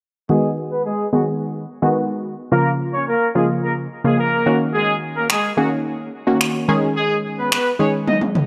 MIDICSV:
0, 0, Header, 1, 4, 480
1, 0, Start_track
1, 0, Tempo, 555556
1, 257, Time_signature, 4, 2, 24, 8
1, 7313, End_track
2, 0, Start_track
2, 0, Title_t, "Horn section"
2, 0, Program_c, 0, 61
2, 257, Note_on_c, 0, 68, 98
2, 263, Note_on_c, 0, 56, 72
2, 425, Note_off_c, 0, 68, 0
2, 430, Note_off_c, 0, 56, 0
2, 614, Note_on_c, 0, 71, 67
2, 621, Note_on_c, 0, 59, 53
2, 699, Note_off_c, 0, 71, 0
2, 704, Note_off_c, 0, 59, 0
2, 735, Note_on_c, 0, 68, 83
2, 742, Note_on_c, 0, 56, 65
2, 904, Note_off_c, 0, 68, 0
2, 909, Note_off_c, 0, 56, 0
2, 976, Note_on_c, 0, 66, 73
2, 983, Note_on_c, 0, 54, 56
2, 1061, Note_off_c, 0, 66, 0
2, 1065, Note_off_c, 0, 54, 0
2, 2176, Note_on_c, 0, 70, 91
2, 2183, Note_on_c, 0, 58, 70
2, 2345, Note_off_c, 0, 70, 0
2, 2349, Note_off_c, 0, 58, 0
2, 2537, Note_on_c, 0, 73, 73
2, 2545, Note_on_c, 0, 61, 57
2, 2621, Note_off_c, 0, 73, 0
2, 2626, Note_off_c, 0, 61, 0
2, 2658, Note_on_c, 0, 70, 78
2, 2665, Note_on_c, 0, 58, 60
2, 2826, Note_off_c, 0, 70, 0
2, 2831, Note_off_c, 0, 58, 0
2, 2899, Note_on_c, 0, 68, 72
2, 2906, Note_on_c, 0, 56, 58
2, 2983, Note_off_c, 0, 68, 0
2, 2987, Note_off_c, 0, 56, 0
2, 3139, Note_on_c, 0, 70, 75
2, 3146, Note_on_c, 0, 58, 57
2, 3222, Note_off_c, 0, 70, 0
2, 3227, Note_off_c, 0, 58, 0
2, 3499, Note_on_c, 0, 68, 73
2, 3506, Note_on_c, 0, 56, 58
2, 3582, Note_off_c, 0, 68, 0
2, 3587, Note_off_c, 0, 56, 0
2, 3617, Note_on_c, 0, 70, 83
2, 3624, Note_on_c, 0, 58, 60
2, 3955, Note_off_c, 0, 70, 0
2, 3959, Note_off_c, 0, 58, 0
2, 4097, Note_on_c, 0, 68, 100
2, 4105, Note_on_c, 0, 56, 76
2, 4265, Note_off_c, 0, 68, 0
2, 4270, Note_off_c, 0, 56, 0
2, 4459, Note_on_c, 0, 70, 67
2, 4467, Note_on_c, 0, 58, 51
2, 4543, Note_off_c, 0, 70, 0
2, 4547, Note_off_c, 0, 58, 0
2, 4580, Note_on_c, 0, 68, 85
2, 4586, Note_on_c, 0, 56, 69
2, 4747, Note_off_c, 0, 68, 0
2, 4751, Note_off_c, 0, 56, 0
2, 4819, Note_on_c, 0, 66, 73
2, 4826, Note_on_c, 0, 54, 58
2, 4903, Note_off_c, 0, 66, 0
2, 4907, Note_off_c, 0, 54, 0
2, 6018, Note_on_c, 0, 68, 94
2, 6026, Note_on_c, 0, 56, 73
2, 6186, Note_off_c, 0, 68, 0
2, 6191, Note_off_c, 0, 56, 0
2, 6380, Note_on_c, 0, 71, 70
2, 6386, Note_on_c, 0, 59, 58
2, 6463, Note_off_c, 0, 71, 0
2, 6467, Note_off_c, 0, 59, 0
2, 6499, Note_on_c, 0, 71, 81
2, 6506, Note_on_c, 0, 59, 62
2, 6667, Note_off_c, 0, 71, 0
2, 6671, Note_off_c, 0, 59, 0
2, 6739, Note_on_c, 0, 73, 74
2, 6746, Note_on_c, 0, 61, 57
2, 6823, Note_off_c, 0, 73, 0
2, 6827, Note_off_c, 0, 61, 0
2, 6980, Note_on_c, 0, 75, 77
2, 6986, Note_on_c, 0, 63, 59
2, 7063, Note_off_c, 0, 75, 0
2, 7067, Note_off_c, 0, 63, 0
2, 7313, End_track
3, 0, Start_track
3, 0, Title_t, "Synth stab"
3, 0, Program_c, 1, 62
3, 254, Note_on_c, 1, 51, 72
3, 256, Note_on_c, 1, 56, 65
3, 257, Note_on_c, 1, 59, 68
3, 258, Note_on_c, 1, 66, 80
3, 801, Note_off_c, 1, 51, 0
3, 802, Note_off_c, 1, 56, 0
3, 803, Note_off_c, 1, 59, 0
3, 803, Note_off_c, 1, 66, 0
3, 973, Note_on_c, 1, 51, 74
3, 974, Note_on_c, 1, 56, 65
3, 977, Note_on_c, 1, 59, 65
3, 978, Note_on_c, 1, 68, 78
3, 1430, Note_off_c, 1, 51, 0
3, 1431, Note_off_c, 1, 56, 0
3, 1432, Note_off_c, 1, 59, 0
3, 1432, Note_off_c, 1, 68, 0
3, 1575, Note_on_c, 1, 51, 87
3, 1576, Note_on_c, 1, 56, 82
3, 1577, Note_on_c, 1, 59, 77
3, 1579, Note_on_c, 1, 66, 99
3, 2031, Note_off_c, 1, 51, 0
3, 2032, Note_off_c, 1, 56, 0
3, 2032, Note_off_c, 1, 59, 0
3, 2033, Note_off_c, 1, 66, 0
3, 2175, Note_on_c, 1, 49, 72
3, 2176, Note_on_c, 1, 53, 68
3, 2177, Note_on_c, 1, 58, 70
3, 2179, Note_on_c, 1, 65, 79
3, 2722, Note_off_c, 1, 49, 0
3, 2722, Note_off_c, 1, 53, 0
3, 2723, Note_off_c, 1, 58, 0
3, 2724, Note_off_c, 1, 65, 0
3, 2895, Note_on_c, 1, 49, 71
3, 2896, Note_on_c, 1, 53, 68
3, 2898, Note_on_c, 1, 58, 67
3, 2899, Note_on_c, 1, 65, 78
3, 3351, Note_off_c, 1, 49, 0
3, 3352, Note_off_c, 1, 53, 0
3, 3352, Note_off_c, 1, 58, 0
3, 3353, Note_off_c, 1, 65, 0
3, 3494, Note_on_c, 1, 49, 72
3, 3496, Note_on_c, 1, 53, 70
3, 3499, Note_on_c, 1, 58, 68
3, 3500, Note_on_c, 1, 65, 79
3, 3845, Note_off_c, 1, 58, 0
3, 3854, Note_on_c, 1, 51, 82
3, 3856, Note_off_c, 1, 49, 0
3, 3856, Note_off_c, 1, 53, 0
3, 3856, Note_on_c, 1, 58, 72
3, 3857, Note_on_c, 1, 61, 73
3, 3858, Note_off_c, 1, 65, 0
3, 3859, Note_on_c, 1, 66, 92
3, 4623, Note_off_c, 1, 51, 0
3, 4624, Note_off_c, 1, 58, 0
3, 4625, Note_off_c, 1, 61, 0
3, 4626, Note_off_c, 1, 66, 0
3, 4813, Note_on_c, 1, 51, 73
3, 4815, Note_on_c, 1, 58, 65
3, 4816, Note_on_c, 1, 61, 70
3, 4817, Note_on_c, 1, 68, 81
3, 5270, Note_off_c, 1, 51, 0
3, 5271, Note_off_c, 1, 58, 0
3, 5271, Note_off_c, 1, 61, 0
3, 5272, Note_off_c, 1, 68, 0
3, 5415, Note_on_c, 1, 51, 90
3, 5417, Note_on_c, 1, 58, 83
3, 5418, Note_on_c, 1, 61, 77
3, 5420, Note_on_c, 1, 66, 96
3, 5764, Note_off_c, 1, 51, 0
3, 5766, Note_off_c, 1, 61, 0
3, 5774, Note_on_c, 1, 51, 99
3, 5776, Note_on_c, 1, 56, 88
3, 5777, Note_off_c, 1, 58, 0
3, 5777, Note_on_c, 1, 61, 87
3, 5779, Note_off_c, 1, 66, 0
3, 5779, Note_on_c, 1, 68, 106
3, 6544, Note_off_c, 1, 51, 0
3, 6544, Note_off_c, 1, 56, 0
3, 6545, Note_off_c, 1, 61, 0
3, 6546, Note_off_c, 1, 68, 0
3, 6733, Note_on_c, 1, 51, 71
3, 6735, Note_on_c, 1, 56, 66
3, 6737, Note_on_c, 1, 61, 67
3, 6739, Note_on_c, 1, 68, 78
3, 7190, Note_off_c, 1, 51, 0
3, 7191, Note_off_c, 1, 56, 0
3, 7192, Note_off_c, 1, 61, 0
3, 7193, Note_off_c, 1, 68, 0
3, 7313, End_track
4, 0, Start_track
4, 0, Title_t, "Drums"
4, 4577, Note_on_c, 9, 26, 111
4, 4663, Note_off_c, 9, 26, 0
4, 5536, Note_on_c, 9, 26, 105
4, 5623, Note_off_c, 9, 26, 0
4, 6498, Note_on_c, 9, 26, 108
4, 6584, Note_off_c, 9, 26, 0
4, 6977, Note_on_c, 9, 48, 50
4, 7063, Note_off_c, 9, 48, 0
4, 7097, Note_on_c, 9, 48, 47
4, 7183, Note_off_c, 9, 48, 0
4, 7217, Note_on_c, 9, 47, 62
4, 7303, Note_off_c, 9, 47, 0
4, 7313, End_track
0, 0, End_of_file